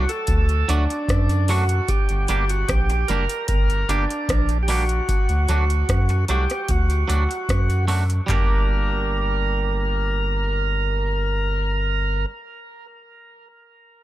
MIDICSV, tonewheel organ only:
0, 0, Header, 1, 2, 480
1, 0, Start_track
1, 0, Key_signature, -2, "minor"
1, 0, Tempo, 800320
1, 1129, Time_signature, 4, 2, 24, 8
1, 8416, End_track
2, 0, Start_track
2, 0, Title_t, "Tonewheel organ"
2, 0, Program_c, 0, 16
2, 0, Note_on_c, 0, 66, 102
2, 55, Note_on_c, 0, 69, 93
2, 69, Note_off_c, 0, 66, 0
2, 416, Note_on_c, 0, 62, 108
2, 421, Note_off_c, 0, 69, 0
2, 898, Note_on_c, 0, 66, 94
2, 907, Note_off_c, 0, 62, 0
2, 1132, Note_on_c, 0, 67, 93
2, 1141, Note_off_c, 0, 66, 0
2, 1499, Note_on_c, 0, 66, 95
2, 1506, Note_off_c, 0, 67, 0
2, 1608, Note_on_c, 0, 67, 95
2, 1615, Note_off_c, 0, 66, 0
2, 1848, Note_on_c, 0, 70, 99
2, 1856, Note_off_c, 0, 67, 0
2, 2082, Note_off_c, 0, 70, 0
2, 2089, Note_on_c, 0, 70, 101
2, 2334, Note_on_c, 0, 62, 88
2, 2336, Note_off_c, 0, 70, 0
2, 2747, Note_off_c, 0, 62, 0
2, 2775, Note_on_c, 0, 67, 68
2, 2813, Note_off_c, 0, 67, 0
2, 2816, Note_on_c, 0, 66, 89
2, 3748, Note_off_c, 0, 66, 0
2, 3781, Note_on_c, 0, 67, 83
2, 4022, Note_off_c, 0, 67, 0
2, 4022, Note_on_c, 0, 66, 78
2, 4712, Note_off_c, 0, 66, 0
2, 4985, Note_on_c, 0, 70, 83
2, 7352, Note_off_c, 0, 70, 0
2, 8416, End_track
0, 0, End_of_file